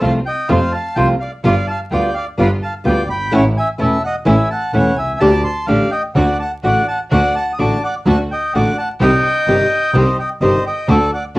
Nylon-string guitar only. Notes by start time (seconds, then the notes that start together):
0.00 C3 F3 A3 C4 F4
0.49 C3 F3 A3 C4 F4
0.96 C3 F3 A3 C4 F4
1.44 G3 B3 F4
1.92 G3 B3 F4
2.38 G3 B3 F4
2.84 G3 B3 F4
3.32 E3 A3 C#4 E4
3.78 E3 A3 C#4 E4
4.25 E3 A3 C#4 E4
4.73 E3 A3 C#4 E4
5.20 D3 A3 D4 G4
5.68 D3 A3 D4 G4
6.16 D3 A3 D4 F#4
6.64 D3 A3 D4 F#4
7.11 D3 A3 D4 F#4
7.59 D3 A3 D4 F#4
8.06 D3 A3 D4 F#4
8.55 D3 A3 D4 F#4
9.02 C3 D#3 G3 C4 G4
9.47 C3 D#3 G3 C4 G4
9.95 C3 D#3 G3 C4 G4
10.41 C3 D#3 G3 C4 G4
10.89 D3 A3 D4 F#4
11.35 D3 A3